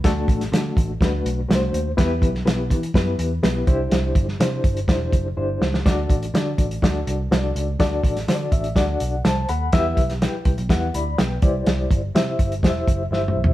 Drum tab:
HH |x-----x--x--x-----x-----x-----x-----x-----x-----|x-----x-----x-----x--x--x-----x-----x-----x-----|x-----x-----x-----x--x--x-----x-----------------|x-----x--x--x-----x--x--x-----x-----x-----x-----|
SD |o--------o--o-----------o-----------o-----------|o--------o--o-----------o-----------o-----------|o--------o--o-----------o-----------------o--o--|o-----------o-----------o-----------o-----------|
T2 |------------------------------------------------|------------------------------------------------|------------------------------------------------|------------------------------------------------|
FT |------------------------------------------------|------------------------------------------------|------------------------------------------------|------------------------------------------------|
BD |o-----o-----------o-----o-----------------------|o-----o-----------o-----o-----------------o-----|------o-----------o-----o-----o-----------------|o-----o-----------o-----o-----------------------|

HH |x-----x--x--x-----x--x--x-----x-----x-----x-----|x-----x--x--x-----x--x--x-----x-----x-----x-----|x-----x-----x-----x--x--x-----x-----------------|
SD |o--------o--o-----------o-----------o-----------|o--------o--o-----------o-----------o-----------|o-----------o-----------o-----------o-----------|
T2 |------------------------------------------------|------------------------------------------------|----------------------------------------o-------|
FT |------------------------------------------------|------------------------------------------------|--------------------------------------------o---|
BD |o-----o-----------o-----o-----------------------|o-----o-----------o-----o-----------------o-----|------o-----------o-----o-----o-----------------|